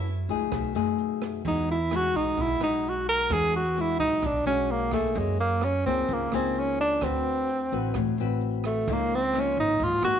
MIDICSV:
0, 0, Header, 1, 5, 480
1, 0, Start_track
1, 0, Tempo, 464756
1, 1495, Time_signature, 4, 2, 24, 8
1, 10531, End_track
2, 0, Start_track
2, 0, Title_t, "Tenor saxophone"
2, 0, Program_c, 0, 66
2, 1523, Note_on_c, 0, 63, 77
2, 1733, Note_off_c, 0, 63, 0
2, 1769, Note_on_c, 0, 64, 81
2, 2020, Note_on_c, 0, 66, 93
2, 2036, Note_off_c, 0, 64, 0
2, 2231, Note_on_c, 0, 63, 86
2, 2246, Note_off_c, 0, 66, 0
2, 2494, Note_on_c, 0, 64, 93
2, 2509, Note_off_c, 0, 63, 0
2, 2715, Note_off_c, 0, 64, 0
2, 2720, Note_on_c, 0, 63, 83
2, 2983, Note_on_c, 0, 66, 75
2, 2998, Note_off_c, 0, 63, 0
2, 3185, Note_off_c, 0, 66, 0
2, 3191, Note_on_c, 0, 70, 106
2, 3437, Note_on_c, 0, 68, 92
2, 3453, Note_off_c, 0, 70, 0
2, 3667, Note_off_c, 0, 68, 0
2, 3675, Note_on_c, 0, 66, 75
2, 3929, Note_on_c, 0, 64, 75
2, 3944, Note_off_c, 0, 66, 0
2, 4119, Note_off_c, 0, 64, 0
2, 4126, Note_on_c, 0, 63, 85
2, 4404, Note_on_c, 0, 62, 73
2, 4419, Note_off_c, 0, 63, 0
2, 4606, Note_off_c, 0, 62, 0
2, 4612, Note_on_c, 0, 61, 84
2, 4869, Note_on_c, 0, 58, 73
2, 4884, Note_off_c, 0, 61, 0
2, 5091, Note_off_c, 0, 58, 0
2, 5097, Note_on_c, 0, 57, 78
2, 5358, Note_on_c, 0, 56, 69
2, 5374, Note_off_c, 0, 57, 0
2, 5575, Note_off_c, 0, 56, 0
2, 5581, Note_on_c, 0, 58, 76
2, 5826, Note_on_c, 0, 61, 79
2, 5841, Note_off_c, 0, 58, 0
2, 6044, Note_off_c, 0, 61, 0
2, 6051, Note_on_c, 0, 60, 82
2, 6332, Note_on_c, 0, 58, 73
2, 6347, Note_off_c, 0, 60, 0
2, 6546, Note_off_c, 0, 58, 0
2, 6553, Note_on_c, 0, 60, 78
2, 6808, Note_on_c, 0, 61, 72
2, 6824, Note_off_c, 0, 60, 0
2, 7023, Note_off_c, 0, 61, 0
2, 7029, Note_on_c, 0, 62, 88
2, 7269, Note_on_c, 0, 60, 80
2, 7284, Note_off_c, 0, 62, 0
2, 8221, Note_off_c, 0, 60, 0
2, 8946, Note_on_c, 0, 57, 75
2, 9214, Note_on_c, 0, 58, 76
2, 9229, Note_off_c, 0, 57, 0
2, 9446, Note_on_c, 0, 60, 86
2, 9461, Note_off_c, 0, 58, 0
2, 9707, Note_on_c, 0, 61, 74
2, 9723, Note_off_c, 0, 60, 0
2, 9906, Note_off_c, 0, 61, 0
2, 9913, Note_on_c, 0, 63, 85
2, 10156, Note_on_c, 0, 65, 82
2, 10172, Note_off_c, 0, 63, 0
2, 10367, Note_off_c, 0, 65, 0
2, 10374, Note_on_c, 0, 66, 107
2, 10531, Note_off_c, 0, 66, 0
2, 10531, End_track
3, 0, Start_track
3, 0, Title_t, "Nylon-string guitar"
3, 0, Program_c, 1, 24
3, 0, Note_on_c, 1, 54, 56
3, 307, Note_on_c, 1, 63, 57
3, 308, Note_on_c, 1, 57, 52
3, 313, Note_on_c, 1, 68, 70
3, 515, Note_off_c, 1, 54, 0
3, 547, Note_on_c, 1, 47, 63
3, 742, Note_off_c, 1, 63, 0
3, 743, Note_off_c, 1, 57, 0
3, 745, Note_off_c, 1, 68, 0
3, 773, Note_on_c, 1, 57, 69
3, 779, Note_on_c, 1, 63, 67
3, 784, Note_on_c, 1, 68, 72
3, 1456, Note_off_c, 1, 57, 0
3, 1460, Note_off_c, 1, 63, 0
3, 1461, Note_off_c, 1, 68, 0
3, 1477, Note_off_c, 1, 47, 0
3, 1502, Note_on_c, 1, 52, 48
3, 1507, Note_on_c, 1, 56, 54
3, 1509, Note_on_c, 1, 63, 51
3, 1514, Note_on_c, 1, 66, 60
3, 1809, Note_off_c, 1, 56, 0
3, 1812, Note_off_c, 1, 63, 0
3, 1814, Note_off_c, 1, 66, 0
3, 1984, Note_on_c, 1, 56, 62
3, 1988, Note_on_c, 1, 63, 53
3, 1995, Note_on_c, 1, 66, 68
3, 2436, Note_off_c, 1, 52, 0
3, 2456, Note_on_c, 1, 47, 55
3, 2662, Note_off_c, 1, 56, 0
3, 2664, Note_off_c, 1, 63, 0
3, 2665, Note_off_c, 1, 66, 0
3, 2697, Note_on_c, 1, 56, 70
3, 2702, Note_on_c, 1, 63, 60
3, 2704, Note_on_c, 1, 66, 62
3, 3378, Note_off_c, 1, 56, 0
3, 3381, Note_off_c, 1, 63, 0
3, 3381, Note_off_c, 1, 66, 0
3, 3392, Note_off_c, 1, 47, 0
3, 3409, Note_on_c, 1, 56, 54
3, 3412, Note_on_c, 1, 52, 52
3, 3417, Note_on_c, 1, 62, 56
3, 3422, Note_on_c, 1, 66, 59
3, 3722, Note_off_c, 1, 56, 0
3, 3726, Note_off_c, 1, 62, 0
3, 3728, Note_off_c, 1, 66, 0
3, 3893, Note_on_c, 1, 56, 59
3, 3897, Note_on_c, 1, 62, 52
3, 3904, Note_on_c, 1, 66, 65
3, 4350, Note_off_c, 1, 52, 0
3, 4372, Note_off_c, 1, 56, 0
3, 4373, Note_off_c, 1, 62, 0
3, 4376, Note_on_c, 1, 47, 54
3, 4377, Note_off_c, 1, 66, 0
3, 4605, Note_on_c, 1, 56, 69
3, 4611, Note_on_c, 1, 62, 62
3, 4616, Note_on_c, 1, 66, 64
3, 5052, Note_off_c, 1, 56, 0
3, 5055, Note_off_c, 1, 62, 0
3, 5057, Note_off_c, 1, 66, 0
3, 5086, Note_on_c, 1, 58, 60
3, 5091, Note_on_c, 1, 63, 55
3, 5097, Note_on_c, 1, 68, 66
3, 5312, Note_off_c, 1, 47, 0
3, 5323, Note_on_c, 1, 54, 51
3, 5772, Note_off_c, 1, 58, 0
3, 5775, Note_off_c, 1, 63, 0
3, 5778, Note_off_c, 1, 68, 0
3, 6052, Note_on_c, 1, 58, 52
3, 6057, Note_on_c, 1, 63, 64
3, 6066, Note_on_c, 1, 68, 64
3, 6265, Note_off_c, 1, 54, 0
3, 6294, Note_on_c, 1, 49, 58
3, 6495, Note_off_c, 1, 58, 0
3, 6498, Note_off_c, 1, 63, 0
3, 6502, Note_off_c, 1, 68, 0
3, 6537, Note_on_c, 1, 58, 57
3, 6543, Note_on_c, 1, 63, 61
3, 6547, Note_on_c, 1, 68, 65
3, 7217, Note_off_c, 1, 58, 0
3, 7220, Note_off_c, 1, 63, 0
3, 7222, Note_off_c, 1, 68, 0
3, 7230, Note_off_c, 1, 49, 0
3, 7250, Note_on_c, 1, 50, 53
3, 7256, Note_on_c, 1, 60, 46
3, 7264, Note_on_c, 1, 66, 53
3, 7264, Note_on_c, 1, 71, 67
3, 7731, Note_off_c, 1, 60, 0
3, 7732, Note_off_c, 1, 66, 0
3, 7736, Note_off_c, 1, 71, 0
3, 7975, Note_on_c, 1, 60, 58
3, 7981, Note_on_c, 1, 66, 59
3, 7986, Note_on_c, 1, 71, 64
3, 8189, Note_off_c, 1, 50, 0
3, 8218, Note_on_c, 1, 45, 59
3, 8416, Note_off_c, 1, 60, 0
3, 8417, Note_off_c, 1, 66, 0
3, 8421, Note_off_c, 1, 71, 0
3, 8468, Note_on_c, 1, 60, 66
3, 8476, Note_on_c, 1, 66, 62
3, 8476, Note_on_c, 1, 71, 67
3, 9142, Note_off_c, 1, 60, 0
3, 9144, Note_off_c, 1, 66, 0
3, 9145, Note_off_c, 1, 71, 0
3, 9151, Note_off_c, 1, 45, 0
3, 9182, Note_on_c, 1, 49, 55
3, 9183, Note_on_c, 1, 53, 56
3, 9188, Note_on_c, 1, 63, 62
3, 9189, Note_on_c, 1, 58, 51
3, 9486, Note_off_c, 1, 53, 0
3, 9487, Note_off_c, 1, 58, 0
3, 9489, Note_off_c, 1, 63, 0
3, 9657, Note_on_c, 1, 53, 63
3, 9662, Note_on_c, 1, 58, 60
3, 9665, Note_on_c, 1, 63, 54
3, 10113, Note_off_c, 1, 49, 0
3, 10132, Note_on_c, 1, 44, 61
3, 10336, Note_off_c, 1, 53, 0
3, 10337, Note_off_c, 1, 58, 0
3, 10339, Note_off_c, 1, 63, 0
3, 10364, Note_on_c, 1, 53, 62
3, 10370, Note_on_c, 1, 58, 65
3, 10376, Note_on_c, 1, 63, 77
3, 10531, Note_off_c, 1, 44, 0
3, 10531, Note_off_c, 1, 53, 0
3, 10531, Note_off_c, 1, 58, 0
3, 10531, Note_off_c, 1, 63, 0
3, 10531, End_track
4, 0, Start_track
4, 0, Title_t, "Upright bass"
4, 0, Program_c, 2, 32
4, 0, Note_on_c, 2, 42, 100
4, 253, Note_off_c, 2, 42, 0
4, 297, Note_on_c, 2, 37, 82
4, 519, Note_off_c, 2, 37, 0
4, 532, Note_on_c, 2, 35, 88
4, 757, Note_off_c, 2, 35, 0
4, 777, Note_on_c, 2, 42, 79
4, 1455, Note_off_c, 2, 42, 0
4, 1498, Note_on_c, 2, 40, 100
4, 2176, Note_off_c, 2, 40, 0
4, 2210, Note_on_c, 2, 35, 82
4, 2436, Note_off_c, 2, 35, 0
4, 2451, Note_on_c, 2, 35, 88
4, 2677, Note_off_c, 2, 35, 0
4, 2685, Note_on_c, 2, 35, 74
4, 3370, Note_off_c, 2, 35, 0
4, 3409, Note_on_c, 2, 40, 103
4, 4091, Note_off_c, 2, 40, 0
4, 4129, Note_on_c, 2, 35, 85
4, 4355, Note_off_c, 2, 35, 0
4, 4365, Note_on_c, 2, 35, 87
4, 4594, Note_off_c, 2, 35, 0
4, 4603, Note_on_c, 2, 35, 73
4, 5288, Note_off_c, 2, 35, 0
4, 5323, Note_on_c, 2, 42, 104
4, 6007, Note_off_c, 2, 42, 0
4, 6051, Note_on_c, 2, 37, 81
4, 6276, Note_off_c, 2, 37, 0
4, 6282, Note_on_c, 2, 37, 79
4, 6511, Note_off_c, 2, 37, 0
4, 6528, Note_on_c, 2, 37, 78
4, 7210, Note_off_c, 2, 37, 0
4, 7250, Note_on_c, 2, 38, 106
4, 7930, Note_off_c, 2, 38, 0
4, 7975, Note_on_c, 2, 33, 79
4, 8197, Note_off_c, 2, 33, 0
4, 8207, Note_on_c, 2, 33, 92
4, 8433, Note_off_c, 2, 33, 0
4, 8447, Note_on_c, 2, 33, 83
4, 9128, Note_off_c, 2, 33, 0
4, 9166, Note_on_c, 2, 37, 104
4, 9847, Note_off_c, 2, 37, 0
4, 9884, Note_on_c, 2, 32, 86
4, 10110, Note_off_c, 2, 32, 0
4, 10118, Note_on_c, 2, 32, 90
4, 10347, Note_off_c, 2, 32, 0
4, 10355, Note_on_c, 2, 32, 76
4, 10531, Note_off_c, 2, 32, 0
4, 10531, End_track
5, 0, Start_track
5, 0, Title_t, "Drums"
5, 56, Note_on_c, 9, 42, 41
5, 159, Note_off_c, 9, 42, 0
5, 296, Note_on_c, 9, 42, 27
5, 399, Note_off_c, 9, 42, 0
5, 534, Note_on_c, 9, 37, 67
5, 534, Note_on_c, 9, 42, 43
5, 536, Note_on_c, 9, 36, 59
5, 638, Note_off_c, 9, 37, 0
5, 638, Note_off_c, 9, 42, 0
5, 639, Note_off_c, 9, 36, 0
5, 773, Note_on_c, 9, 42, 27
5, 876, Note_off_c, 9, 42, 0
5, 1014, Note_on_c, 9, 42, 45
5, 1117, Note_off_c, 9, 42, 0
5, 1257, Note_on_c, 9, 37, 59
5, 1257, Note_on_c, 9, 42, 27
5, 1360, Note_off_c, 9, 37, 0
5, 1360, Note_off_c, 9, 42, 0
5, 1494, Note_on_c, 9, 42, 44
5, 1496, Note_on_c, 9, 36, 57
5, 1598, Note_off_c, 9, 42, 0
5, 1599, Note_off_c, 9, 36, 0
5, 1736, Note_on_c, 9, 42, 29
5, 1840, Note_off_c, 9, 42, 0
5, 1974, Note_on_c, 9, 37, 59
5, 1974, Note_on_c, 9, 42, 42
5, 2078, Note_off_c, 9, 37, 0
5, 2078, Note_off_c, 9, 42, 0
5, 2212, Note_on_c, 9, 42, 26
5, 2316, Note_off_c, 9, 42, 0
5, 2453, Note_on_c, 9, 42, 44
5, 2454, Note_on_c, 9, 36, 60
5, 2557, Note_off_c, 9, 36, 0
5, 2557, Note_off_c, 9, 42, 0
5, 2695, Note_on_c, 9, 37, 55
5, 2695, Note_on_c, 9, 42, 23
5, 2798, Note_off_c, 9, 37, 0
5, 2798, Note_off_c, 9, 42, 0
5, 2940, Note_on_c, 9, 42, 46
5, 3043, Note_off_c, 9, 42, 0
5, 3178, Note_on_c, 9, 42, 24
5, 3281, Note_off_c, 9, 42, 0
5, 3412, Note_on_c, 9, 36, 56
5, 3414, Note_on_c, 9, 37, 52
5, 3414, Note_on_c, 9, 42, 43
5, 3515, Note_off_c, 9, 36, 0
5, 3517, Note_off_c, 9, 37, 0
5, 3517, Note_off_c, 9, 42, 0
5, 3653, Note_on_c, 9, 42, 26
5, 3756, Note_off_c, 9, 42, 0
5, 3886, Note_on_c, 9, 42, 39
5, 3989, Note_off_c, 9, 42, 0
5, 4127, Note_on_c, 9, 42, 29
5, 4129, Note_on_c, 9, 36, 52
5, 4231, Note_off_c, 9, 42, 0
5, 4232, Note_off_c, 9, 36, 0
5, 4363, Note_on_c, 9, 37, 58
5, 4363, Note_on_c, 9, 42, 43
5, 4367, Note_on_c, 9, 36, 61
5, 4466, Note_off_c, 9, 37, 0
5, 4466, Note_off_c, 9, 42, 0
5, 4471, Note_off_c, 9, 36, 0
5, 4599, Note_on_c, 9, 42, 26
5, 4702, Note_off_c, 9, 42, 0
5, 4840, Note_on_c, 9, 42, 47
5, 4943, Note_off_c, 9, 42, 0
5, 5077, Note_on_c, 9, 37, 56
5, 5077, Note_on_c, 9, 42, 24
5, 5086, Note_on_c, 9, 36, 45
5, 5180, Note_off_c, 9, 37, 0
5, 5180, Note_off_c, 9, 42, 0
5, 5189, Note_off_c, 9, 36, 0
5, 5317, Note_on_c, 9, 42, 43
5, 5325, Note_on_c, 9, 36, 58
5, 5420, Note_off_c, 9, 42, 0
5, 5428, Note_off_c, 9, 36, 0
5, 5563, Note_on_c, 9, 42, 31
5, 5667, Note_off_c, 9, 42, 0
5, 5798, Note_on_c, 9, 37, 58
5, 5798, Note_on_c, 9, 42, 42
5, 5901, Note_off_c, 9, 37, 0
5, 5901, Note_off_c, 9, 42, 0
5, 6051, Note_on_c, 9, 42, 30
5, 6154, Note_off_c, 9, 42, 0
5, 6285, Note_on_c, 9, 42, 44
5, 6288, Note_on_c, 9, 36, 60
5, 6389, Note_off_c, 9, 42, 0
5, 6391, Note_off_c, 9, 36, 0
5, 6526, Note_on_c, 9, 37, 50
5, 6526, Note_on_c, 9, 42, 24
5, 6629, Note_off_c, 9, 37, 0
5, 6629, Note_off_c, 9, 42, 0
5, 6765, Note_on_c, 9, 42, 45
5, 6868, Note_off_c, 9, 42, 0
5, 7010, Note_on_c, 9, 42, 25
5, 7113, Note_off_c, 9, 42, 0
5, 7244, Note_on_c, 9, 37, 57
5, 7244, Note_on_c, 9, 42, 39
5, 7249, Note_on_c, 9, 36, 64
5, 7348, Note_off_c, 9, 37, 0
5, 7348, Note_off_c, 9, 42, 0
5, 7352, Note_off_c, 9, 36, 0
5, 7495, Note_on_c, 9, 42, 28
5, 7599, Note_off_c, 9, 42, 0
5, 7728, Note_on_c, 9, 42, 39
5, 7832, Note_off_c, 9, 42, 0
5, 7969, Note_on_c, 9, 42, 27
5, 8072, Note_off_c, 9, 42, 0
5, 8202, Note_on_c, 9, 37, 60
5, 8202, Note_on_c, 9, 42, 43
5, 8208, Note_on_c, 9, 36, 66
5, 8306, Note_off_c, 9, 37, 0
5, 8306, Note_off_c, 9, 42, 0
5, 8312, Note_off_c, 9, 36, 0
5, 8437, Note_on_c, 9, 42, 26
5, 8541, Note_off_c, 9, 42, 0
5, 8682, Note_on_c, 9, 42, 46
5, 8785, Note_off_c, 9, 42, 0
5, 8922, Note_on_c, 9, 37, 59
5, 8922, Note_on_c, 9, 42, 27
5, 9025, Note_off_c, 9, 37, 0
5, 9025, Note_off_c, 9, 42, 0
5, 9166, Note_on_c, 9, 36, 63
5, 9167, Note_on_c, 9, 42, 46
5, 9270, Note_off_c, 9, 36, 0
5, 9271, Note_off_c, 9, 42, 0
5, 9405, Note_on_c, 9, 42, 32
5, 9508, Note_off_c, 9, 42, 0
5, 9641, Note_on_c, 9, 37, 57
5, 9641, Note_on_c, 9, 42, 45
5, 9744, Note_off_c, 9, 37, 0
5, 9744, Note_off_c, 9, 42, 0
5, 9883, Note_on_c, 9, 42, 29
5, 9986, Note_off_c, 9, 42, 0
5, 10113, Note_on_c, 9, 42, 48
5, 10120, Note_on_c, 9, 36, 66
5, 10216, Note_off_c, 9, 42, 0
5, 10223, Note_off_c, 9, 36, 0
5, 10357, Note_on_c, 9, 37, 60
5, 10357, Note_on_c, 9, 42, 29
5, 10460, Note_off_c, 9, 37, 0
5, 10460, Note_off_c, 9, 42, 0
5, 10531, End_track
0, 0, End_of_file